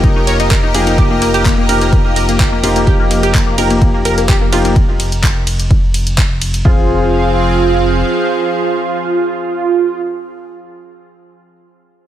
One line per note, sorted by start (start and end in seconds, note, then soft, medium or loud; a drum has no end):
0.00 6.63 F1 medium
0.00 0.72 F3 medium
0.00 0.72 A#3 medium
0.00 0.72 D#4 medium
0.00 0.13 D#4 medium
0.00 0.72 G4 medium
0.00 4.72 G4 medium
0.00 4.72 A#4 medium
0.00 4.72 D#5 medium
0.00 4.72 A#5 medium
0.00 kick loud
0.00 closed hi-hat medium
0.16 0.25 D#4 medium
0.27 0.37 C#5 medium
0.27 open hi-hat loud
0.27 ride medium
0.40 0.48 D#4 medium
0.40 closed hi-hat medium
0.51 0.60 A#4 medium
0.51 kick loud
0.51 clap loud
0.51 closed hi-hat soft
0.63 0.72 D#4 medium
0.74 0.95 F3 medium
0.74 0.95 A#3 medium
0.74 0.95 D#4 medium
0.74 0.95 G4 loud
0.74 0.84 G#4 medium
0.74 open hi-hat loud
0.74 ride medium
0.87 0.95 D#4 medium
0.87 closed hi-hat medium
0.98 1.66 F3 medium
0.98 1.66 A#3 medium
0.98 1.66 D#4 medium
0.98 1.66 G4 medium
0.98 1.08 G4 loud
0.98 kick loud
0.98 closed hi-hat medium
1.11 1.19 A#3 medium
1.22 1.31 A#3 medium
1.22 open hi-hat loud
1.22 ride medium
1.34 1.43 G4 medium
1.34 closed hi-hat medium
1.45 1.55 A#3 medium
1.45 kick loud
1.45 clap loud
1.45 closed hi-hat medium
1.58 1.66 A#3 medium
1.69 2.61 F3 medium
1.69 2.61 A#3 medium
1.69 2.61 D#4 medium
1.69 2.61 G4 medium
1.69 1.78 A#4 medium
1.69 open hi-hat loud
1.69 ride medium
1.81 1.90 A#3 medium
1.81 closed hi-hat medium
1.93 2.02 A#3 medium
1.93 kick loud
1.93 closed hi-hat medium
2.05 2.14 A#3 medium
2.16 2.26 A#4 medium
2.16 open hi-hat loud
2.16 ride medium
2.29 2.37 A#3 medium
2.29 closed hi-hat medium
2.40 2.49 G4 medium
2.40 kick loud
2.40 clap loud
2.40 closed hi-hat medium
2.52 2.61 A#3 medium
2.63 2.84 F3 medium
2.63 2.84 A#3 medium
2.63 2.84 D#4 medium
2.63 2.73 F4 medium
2.63 2.84 G4 loud
2.63 open hi-hat loud
2.63 ride medium
2.76 2.84 A#3 medium
2.76 closed hi-hat medium
2.87 3.55 F3 medium
2.87 3.55 A#3 medium
2.87 3.55 D#4 medium
2.87 3.55 G4 medium
2.87 2.97 G4 loud
2.87 kick loud
2.87 closed hi-hat medium
3.00 3.08 A#3 medium
3.11 3.20 A#3 medium
3.11 open hi-hat loud
3.11 ride medium
3.23 3.32 G4 medium
3.23 closed hi-hat medium
3.34 3.44 A#3 medium
3.34 kick loud
3.34 clap loud
3.34 closed hi-hat medium
3.47 3.55 A#3 medium
3.58 4.50 F3 medium
3.58 4.50 A#3 medium
3.58 4.50 D#4 medium
3.58 4.50 G4 medium
3.58 3.67 A#4 medium
3.58 open hi-hat loud
3.58 ride medium
3.70 3.79 A#3 medium
3.70 closed hi-hat medium
3.82 3.91 A#3 medium
3.82 kick loud
3.82 closed hi-hat medium
3.94 4.03 A#3 medium
4.05 4.15 A#4 medium
4.05 open hi-hat loud
4.05 ride medium
4.18 4.26 A#3 medium
4.18 closed hi-hat medium
4.29 4.38 G4 medium
4.29 kick loud
4.29 clap loud
4.29 closed hi-hat medium
4.41 4.50 A#3 medium
4.52 4.73 F3 medium
4.52 4.73 A#3 medium
4.52 4.73 D#4 medium
4.52 4.62 F4 medium
4.52 4.73 G4 loud
4.52 open hi-hat loud
4.52 ride medium
4.65 4.73 A#3 medium
4.65 closed hi-hat medium
4.76 kick loud
4.76 closed hi-hat medium
5.00 open hi-hat loud
5.00 ride medium
5.12 closed hi-hat medium
5.23 kick loud
5.23 clap loud
5.23 closed hi-hat medium
5.47 open hi-hat loud
5.47 ride medium
5.59 closed hi-hat medium
5.71 kick loud
5.71 closed hi-hat medium
5.94 open hi-hat loud
5.94 ride medium
6.07 closed hi-hat medium
6.18 kick loud
6.18 clap loud
6.18 closed hi-hat medium
6.42 open hi-hat loud
6.42 ride medium
6.54 closed hi-hat medium
6.65 8.03 F1 loud
6.65 10.01 F3 medium
6.65 10.01 C4 medium
6.65 10.01 F4 medium
6.65 10.01 G#4 loud
6.65 10.01 G#4 medium
6.65 10.01 F5 medium
6.65 kick loud